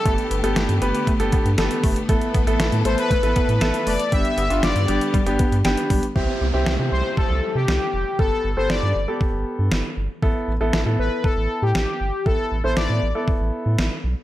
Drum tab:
HH |xxxxxxxxxxxxxxox|xxxxxxxxxxxxxxox|xxxxxxxxxxxxxxox|----------------|
SD |----o-------o---|----o-------o---|----o-------o---|----o-------o---|
BD |o-------o-o---o-|o-o-----o-o-----|o-------o-o---o-|o-------o-------|

HH |----------------|----------------|----------------|
SD |----o-------o---|----o-------o---|----o-------o---|
BD |o-------o-------|o-------o-------|o-------o-------|